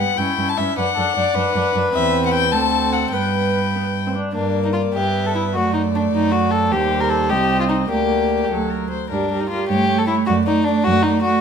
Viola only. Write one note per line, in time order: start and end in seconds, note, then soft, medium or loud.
0.00 0.18 B3 soft
0.19 0.38 C#4 soft
0.38 0.57 C#4 soft
0.58 0.77 C#4 soft
0.78 0.96 D4 soft
0.97 1.16 D4 soft
1.16 1.35 D4 soft
1.36 1.54 D4 soft
1.55 1.74 D4 soft
1.74 1.93 D4 soft
1.94 2.48 C4 soft
2.52 3.14 C4 soft
3.13 3.70 B3 soft
3.75 3.83 B3 soft
4.06 4.10 C4 soft
4.15 4.35 D4 soft
4.36 4.99 A#3 soft
4.97 5.57 B3 soft
5.56 6.74 A3 soft
6.72 7.32 G3 soft
7.30 7.90 C4 soft
7.91 8.53 A#3 soft
8.51 8.91 F#3 soft
9.13 9.31 G3 soft
9.32 9.50 G3 soft
9.52 9.70 G3 soft
9.72 9.90 A3 soft
9.90 10.09 A3 soft
10.11 10.29 A3 soft
10.29 10.47 A3 soft
10.48 10.66 A3 soft
10.68 10.86 A3 soft
10.87 11.05 A3 soft
11.06 11.25 A3 soft
11.25 11.41 A3 soft